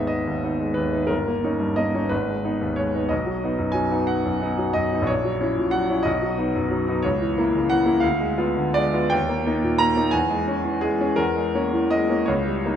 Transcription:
0.00 1.07 G#1 soft
0.00 0.27 D#2 soft
0.00 0.60 G#3 soft
0.00 0.44 B3 soft
0.00 0.44 D#4 soft
0.00 0.74 B4 soft
0.00 1.14 E5 medium
0.07 0.77 D#5 soft
0.27 0.55 D#2 soft
0.44 0.60 B3 soft
0.44 0.60 D#4 soft
0.60 0.87 G#3 soft
0.74 1.04 D#2 soft
0.74 1.09 B4 medium
0.93 1.08 B3 soft
0.93 1.09 D#4 soft
1.07 2.07 G1 soft
1.07 1.75 A#4 medium
1.28 1.54 A#3 soft
1.44 1.59 C#4 soft
1.44 1.59 D#4 soft
1.60 1.87 G2 soft
1.76 2.05 A#3 soft
1.76 2.11 D#5 medium
1.95 2.10 C#4 soft
1.95 2.10 D#4 soft
2.09 3.08 G#1 soft
2.09 2.77 B4 medium
2.28 2.55 G#3 soft
2.45 2.60 B3 soft
2.45 2.60 D#4 soft
2.61 2.88 D#2 soft
2.76 3.05 G#3 soft
2.76 3.10 C#5 medium
2.95 3.10 B3 soft
2.95 3.10 D#4 soft
3.09 5.04 B1 soft
3.09 3.75 D#5 soft
3.26 3.53 F#3 soft
3.44 3.59 B3 soft
3.44 3.59 D#4 soft
3.58 3.85 F#2 soft
3.72 4.01 F#3 soft
3.72 4.07 G#5 medium
3.91 4.21 B3 soft
3.91 4.21 D#4 soft
4.07 4.74 F#5 medium
4.25 4.52 F#2 soft
4.41 4.57 B3 soft
4.41 4.57 D#4 soft
4.58 4.85 F#3 soft
4.73 5.02 F#2 soft
4.73 5.07 D#5 medium
4.92 5.07 B3 soft
4.92 5.07 D#4 soft
5.02 6.00 A#1 soft
5.07 5.73 C#5 medium
5.24 5.51 F#3 soft
5.41 5.56 C#4 soft
5.41 5.56 E4 soft
5.57 5.83 A#2 soft
5.71 5.99 F#3 soft
5.71 6.05 F#5 medium
5.89 6.04 C#4 soft
5.89 6.04 E4 soft
6.03 7.01 B1 soft
6.03 6.70 D#5 medium
6.22 6.48 F#3 soft
6.38 6.53 B3 soft
6.38 6.53 D#4 soft
6.55 6.82 F#2 soft
6.71 6.98 F#3 soft
6.88 7.03 B3 soft
6.88 7.03 D#4 soft
7.02 8.00 C#2 soft
7.02 7.69 C#5 medium
7.21 7.47 E3 soft
7.38 7.52 A#3 soft
7.38 7.52 E4 soft
7.55 7.80 C#3 soft
7.70 7.97 E3 soft
7.70 8.03 F#5 medium
7.85 8.01 A#3 soft
7.85 8.01 E4 soft
8.00 9.09 D2 soft
8.00 8.75 F5 medium
8.20 8.49 G#3 soft
8.38 8.55 B3 soft
8.38 8.55 F4 soft
8.56 8.87 D3 soft
8.74 9.06 G#3 soft
8.74 9.12 D5 medium
8.94 9.11 B3 soft
8.94 9.11 F4 soft
9.10 10.10 D#2 soft
9.10 9.79 G5 medium
9.29 9.45 A#3 soft
9.46 9.62 A#3 soft
9.46 9.62 D#4 soft
9.63 9.90 A#2 soft
9.78 9.95 A#3 soft
9.78 10.13 A#5 medium
9.97 10.12 A#3 soft
9.97 10.12 D#4 soft
10.11 11.15 E2 soft
10.11 10.82 G#5 medium
10.30 10.58 G#3 soft
10.48 10.64 C#4 soft
10.64 10.93 E3 soft
10.81 11.12 G#3 soft
10.81 11.18 G#4 medium
11.01 11.17 C#4 soft
11.16 12.24 E2 soft
11.16 11.89 A#4 medium
11.36 11.65 G#3 soft
11.55 11.71 A#3 soft
11.55 11.71 C#4 soft
11.73 12.02 E3 soft
11.91 12.21 G#3 soft
11.91 12.28 D#5 medium
12.09 12.26 A#3 soft
12.09 12.26 C#4 soft
12.26 12.76 C#2 soft
12.26 12.76 C#5 medium
12.47 12.76 G3 soft
12.66 12.76 A#3 soft
12.66 12.76 D#4 soft

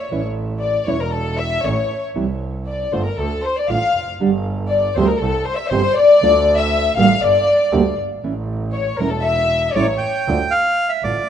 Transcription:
0.00 0.22 C#5 medium
0.11 0.83 A1 medium
0.11 0.20 E3 medium
0.11 0.20 A3 medium
0.11 0.21 C#4 medium
0.11 0.21 E4 medium
0.61 0.85 D5 medium
0.87 1.60 E1 loud
0.87 0.96 E3 medium
0.87 0.96 A3 medium
0.87 0.96 C#4 medium
0.87 0.96 E4 loud
0.87 1.00 C#5 medium
1.01 1.13 A#4 medium
1.12 1.38 A4 medium
1.39 1.64 E5 loud
1.64 1.86 A1 medium
1.64 1.73 E3 medium
1.64 1.73 A3 medium
1.64 1.73 C#4 medium
1.64 1.73 E4 medium
1.64 2.03 C#5 medium
2.15 2.88 C2 medium
2.15 2.24 C3 medium
2.15 2.24 E3 medium
2.15 2.25 G3 medium
2.15 2.25 C4 medium
2.15 2.25 E4 medium
2.68 2.91 D5 medium
2.92 3.14 G1 medium
2.92 3.01 D3 medium
2.92 3.01 A3 medium
2.92 3.02 D4 loud
2.92 3.02 F4 medium
2.92 3.05 C5 medium
3.05 3.17 A#4 medium
3.18 3.39 D2 medium
3.18 3.43 A4 medium
3.44 3.56 C5 medium
3.57 3.69 D5 medium
3.69 3.90 A1 medium
3.69 3.78 D3 medium
3.69 3.78 A3 medium
3.69 3.78 D4 medium
3.69 3.78 F4 medium
3.69 4.07 F5 medium
3.95 4.19 F1 medium
4.20 4.92 G1 loud
4.20 4.29 D3 medium
4.20 4.29 G3 medium
4.20 4.29 D4 medium
4.20 4.29 G4 medium
4.69 4.93 D5 medium
4.95 5.17 D2 loud
4.95 5.05 C3 medium
4.95 5.05 F3 loud
4.95 5.05 G3 medium
4.95 5.05 C4 medium
4.95 5.05 G4 medium
4.95 5.08 C5 medium
5.08 5.21 A#4 medium
5.19 5.42 C2 medium
5.19 5.45 A4 medium
5.45 5.58 C5 medium
5.56 5.70 E5 medium
5.68 5.92 G1 loud
5.68 5.80 C3 medium
5.68 5.80 F3 medium
5.68 5.80 C4 loud
5.68 5.80 G4 loud
5.68 5.95 C5 loud
5.72 5.80 G3 medium
5.95 6.58 D5 loud
6.22 6.93 D2 loud
6.22 6.31 D3 medium
6.22 6.31 A3 loud
6.22 6.31 D4 loud
6.22 6.31 F4 loud
6.58 6.96 E5 loud
6.96 7.17 A1 loud
6.96 7.05 D3 medium
6.96 7.06 G3 loud
6.96 7.06 A#3 medium
6.96 7.06 D4 loud
6.96 7.06 G4 medium
6.96 7.20 F5 loud
7.21 7.43 G1 medium
7.21 7.98 D5 loud
7.72 7.93 D2 medium
7.72 7.81 D3 medium
7.72 7.81 G3 medium
7.72 7.81 A#3 loud
7.72 7.81 D4 medium
7.72 7.81 G4 loud
7.99 8.23 G1 medium
8.23 8.95 A1 medium
8.23 8.32 E3 medium
8.23 8.32 A3 medium
8.23 8.32 C#4 medium
8.23 8.32 E4 medium
8.73 8.97 C#5 medium
8.98 9.72 E1 medium
8.98 9.08 E3 medium
8.98 9.09 A3 medium
8.98 9.09 C#4 medium
8.98 9.09 E4 loud
8.98 9.11 A#4 medium
9.10 9.23 A4 medium
9.21 9.74 E5 loud
9.74 9.97 A1 medium
9.74 9.85 E3 medium
9.74 9.85 A3 medium
9.74 9.85 C#4 medium
9.74 9.85 E4 loud
9.74 10.14 C#5 medium
9.74 9.87 D5 medium
9.98 10.53 G5 medium
10.28 10.49 D2 medium
10.28 10.37 D3 loud
10.28 10.37 A3 loud
10.28 10.37 D4 medium
10.28 10.38 F4 medium
10.51 10.91 F5 loud
10.89 11.03 E5 medium
11.03 11.25 A1 medium
11.03 11.21 D3 medium
11.03 11.21 A3 medium
11.03 11.22 D4 medium
11.03 11.22 F4 medium
11.03 11.29 D5 medium

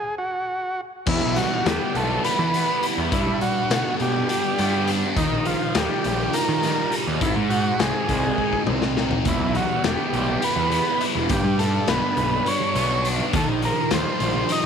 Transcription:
0.00 0.15 G#4 medium
0.18 0.81 F#4 medium
1.06 1.18 E2 medium
1.06 2.53 E2 medium
1.06 1.38 E4 medium
1.06 kick loud
1.06 crash loud
1.22 1.44 B1 medium
1.36 1.95 G3 medium
1.36 1.67 F#4 medium
1.36 snare soft
1.36 closed hi-hat medium
1.66 1.77 E2 medium
1.66 2.52 B3 medium
1.66 1.97 G4 medium
1.66 snare loud
1.66 closed hi-hat medium
1.95 2.17 B1 medium
1.95 3.41 G3 medium
1.95 2.23 A4 loud
1.95 closed hi-hat medium
2.24 2.81 E4 medium
2.24 2.86 B4 loud
2.24 snare soft
2.24 closed hi-hat medium
2.39 2.61 E3 medium
2.53 3.12 B3 medium
2.53 closed hi-hat medium
2.83 3.12 E4 medium
2.83 closed hi-hat medium
2.98 3.09 E2 medium
3.11 4.58 G2 medium
3.11 3.23 G2 medium
3.11 3.40 E4 medium
3.11 kick loud
3.11 closed hi-hat loud
3.27 3.60 G3 medium
3.41 3.98 G3 medium
3.41 3.96 F#4 medium
3.41 closed hi-hat medium
3.70 3.81 B2 loud
3.70 4.56 B3 medium
3.70 snare loud
3.70 closed hi-hat medium
3.99 4.22 B2 medium
3.99 5.16 G3 medium
3.99 4.29 G4 medium
3.99 closed hi-hat medium
4.28 4.86 D4 medium
4.28 4.91 G4 loud
4.28 closed hi-hat medium
4.58 5.03 G2 medium
4.58 5.16 B3 medium
4.58 closed hi-hat medium
4.87 5.16 D4 medium
4.87 closed hi-hat medium
5.16 5.28 D#2 loud
5.16 6.63 D#3 medium
5.16 5.47 D#4 medium
5.16 kick loud
5.16 closed hi-hat loud
5.32 5.54 A#1 medium
5.45 6.03 F3 medium
5.45 5.76 F4 medium
5.45 closed hi-hat medium
5.75 5.87 D#2 medium
5.75 6.62 G3 medium
5.75 6.36 G4 medium
5.75 snare loud
5.75 closed hi-hat medium
6.04 6.27 A#1 medium
6.04 7.21 F3 medium
6.04 closed hi-hat medium
6.33 6.91 D#4 medium
6.33 6.95 A#4 medium
6.33 snare soft
6.33 closed hi-hat loud
6.49 6.71 D#3 medium
6.63 7.22 G3 medium
6.63 snare soft
6.63 closed hi-hat medium
6.92 7.21 D#4 medium
6.92 closed hi-hat medium
7.07 7.18 D#2 medium
7.21 7.32 G#1 loud
7.21 8.67 G#2 medium
7.21 7.35 E4 medium
7.21 kick loud
7.21 closed hi-hat loud
7.36 7.69 G#2 medium
7.50 8.07 G#3 medium
7.50 7.80 F#4 medium
7.50 closed hi-hat medium
7.79 7.91 C2 loud
7.79 8.67 C4 medium
7.79 8.63 G#4 medium
7.79 snare loud
7.79 closed hi-hat medium
8.09 8.31 C2 medium
8.09 9.25 G#3 medium
8.09 kick medium
8.09 closed hi-hat medium
8.38 8.96 D#4 medium
8.38 kick medium
8.53 kick medium
8.67 9.12 C2 medium
8.67 9.26 C4 medium
8.67 mid tom medium
8.82 snare medium
8.97 9.26 D#4 medium
8.97 snare medium
9.11 floor tom medium
9.25 9.37 E1 medium
9.25 10.72 E2 medium
9.25 9.57 E4 medium
9.25 kick loud
9.25 closed hi-hat loud
9.25 high conga medium
9.41 9.63 B1 medium
9.55 10.13 G3 medium
9.55 9.85 F#4 medium
9.55 closed hi-hat medium
9.84 9.95 E1 medium
9.84 10.70 B3 medium
9.84 10.45 G4 medium
9.84 snare loud
9.84 closed hi-hat loud
9.84 low conga medium
10.13 10.35 B1 medium
10.13 11.58 G3 medium
10.13 closed hi-hat medium
10.28 high conga medium
10.28 low conga soft
10.42 10.99 E4 medium
10.42 11.05 B4 medium
10.42 closed hi-hat medium
10.56 10.79 E2 medium
10.56 low conga medium
10.71 11.30 B3 medium
10.71 closed hi-hat medium
11.01 11.30 E4 medium
11.01 closed hi-hat medium
11.15 11.26 E1 medium
11.15 low conga medium
11.29 11.41 G1 loud
11.29 12.75 G2 medium
11.29 11.60 G4 medium
11.29 kick loud
11.29 closed hi-hat loud
11.29 high conga medium
11.44 11.77 G2 loud
11.59 12.16 G3 medium
11.59 11.89 A4 medium
11.59 snare soft
11.59 closed hi-hat medium
11.87 11.99 B1 loud
11.87 12.74 B3 medium
11.87 12.48 B4 medium
11.87 snare loud
11.87 closed hi-hat medium
11.87 low conga medium
12.17 12.39 B1 medium
12.17 13.34 G3 medium
12.17 closed hi-hat medium
12.32 high conga medium
12.32 low conga soft
12.46 13.04 D4 medium
12.46 13.08 C#5 loud
12.46 closed hi-hat medium
12.60 low conga medium
12.75 13.19 B1 medium
12.75 13.34 B3 medium
12.75 closed hi-hat medium
13.05 13.34 D4 medium
13.05 closed hi-hat medium
13.20 low conga medium
13.33 13.44 D#2 medium
13.33 14.66 D#3 medium
13.33 13.48 A4 loud
13.33 kick loud
13.33 closed hi-hat medium
13.33 high conga medium
13.48 13.70 A#1 medium
13.62 14.20 F3 medium
13.62 13.91 A#4 medium
13.62 closed hi-hat medium
13.91 14.03 D#2 medium
13.91 14.66 G3 medium
13.91 14.52 C5 loud
13.91 snare loud
13.91 closed hi-hat loud
13.91 low conga medium
14.20 14.43 A#1 medium
14.20 14.66 F3 medium
14.20 closed hi-hat medium
14.34 high conga medium
14.34 low conga soft
14.49 14.66 D#4 medium
14.49 14.66 D#5 loud
14.49 closed hi-hat medium

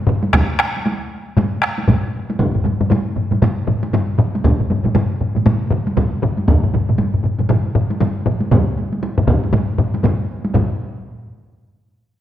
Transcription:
0.07 taiko low-mid loud
0.07 taiko mid loud
0.24 taiko high medium
0.33 taiko rim medium
0.33 taiko loud
0.33 taiko high medium
0.59 taiko rim medium
0.59 taiko rim loud
0.76 taiko high medium
0.86 taiko high medium
1.37 taiko low-mid loud
1.37 taiko mid loud
1.37 taiko high medium
1.62 taiko rim medium
1.63 taiko rim medium
1.78 taiko high medium
1.88 taiko medium
1.88 taiko low-mid loud
1.88 taiko mid loud
1.88 taiko high medium
2.30 taiko high medium
2.39 taiko loud
2.39 taiko low-mid medium
2.39 taiko mid medium
2.39 taiko high medium
2.55 taiko low-mid medium
2.55 taiko mid medium
2.64 taiko low-mid medium
2.64 taiko mid loud
2.64 taiko high medium
2.80 taiko low-mid medium
2.80 taiko mid medium
2.80 taiko high medium
2.90 taiko low-mid loud
2.90 taiko mid loud
2.90 taiko high medium
3.16 taiko low-mid medium
3.16 taiko mid medium
3.31 taiko low-mid medium
3.31 taiko mid medium
3.31 taiko high medium
3.42 taiko low-mid loud
3.42 taiko mid loud
3.42 taiko high medium
3.67 taiko low-mid loud
3.67 taiko mid loud
3.83 taiko high medium
3.93 taiko low-mid loud
3.93 taiko mid loud
3.93 taiko high medium
4.18 taiko low-mid loud
4.18 taiko mid loud
4.35 taiko high medium
4.44 taiko loud
4.44 taiko low-mid medium
4.44 taiko mid medium
4.44 taiko high medium
4.60 taiko low-mid medium
4.60 taiko mid medium
4.70 taiko low-mid medium
4.70 taiko mid medium
4.70 taiko high medium
4.84 taiko low-mid medium
4.84 taiko mid medium
4.84 taiko high medium
4.95 taiko low-mid loud
4.95 taiko mid loud
4.95 taiko high medium
5.21 taiko low-mid medium
5.21 taiko mid medium
5.35 taiko low-mid medium
5.35 taiko mid medium
5.35 taiko high medium
5.46 taiko low-mid loud
5.46 taiko mid loud
5.46 taiko high loud
5.71 taiko low-mid loud
5.71 taiko mid loud
5.87 taiko high medium
5.97 taiko medium
5.97 taiko low-mid loud
5.97 taiko mid loud
5.97 taiko high medium
6.22 taiko low-mid loud
6.22 taiko mid loud
6.37 taiko high medium
6.48 taiko loud
6.48 taiko low-mid medium
6.48 taiko mid medium
6.48 taiko high medium
6.63 taiko low-mid medium
6.63 taiko mid medium
6.74 taiko low-mid medium
6.74 taiko mid loud
6.74 taiko high medium
6.89 taiko low-mid medium
6.89 taiko mid medium
6.89 taiko high soft
6.98 taiko low-mid medium
6.98 taiko mid medium
6.98 taiko high medium
7.14 taiko low-mid medium
7.14 taiko mid medium
7.24 taiko low-mid medium
7.24 taiko mid medium
7.39 taiko low-mid medium
7.39 taiko mid medium
7.39 taiko high medium
7.49 taiko low-mid loud
7.49 taiko mid loud
7.49 taiko high medium
7.75 taiko low-mid loud
7.75 taiko mid loud
7.90 taiko high medium
8.00 taiko low-mid loud
8.00 taiko mid loud
8.00 taiko high medium
8.26 taiko low-mid loud
8.26 taiko mid loud
8.41 taiko high medium
8.51 taiko loud
8.51 taiko low-mid loud
8.51 taiko mid loud
8.51 taiko high medium
8.78 taiko high medium
8.92 taiko high medium
9.03 taiko high medium
9.18 taiko low-mid loud
9.18 taiko mid loud
9.27 taiko loud
9.27 taiko low-mid loud
9.27 taiko mid loud
9.44 taiko high medium
9.53 taiko low-mid loud
9.53 taiko mid loud
9.53 taiko high medium
9.78 taiko low-mid loud
9.78 taiko mid loud
9.94 taiko high medium
10.03 taiko medium
10.03 taiko low-mid loud
10.03 taiko mid loud
10.03 taiko high medium
10.45 taiko high medium
10.54 taiko loud
10.54 taiko low-mid loud
10.54 taiko mid loud
10.54 taiko high medium

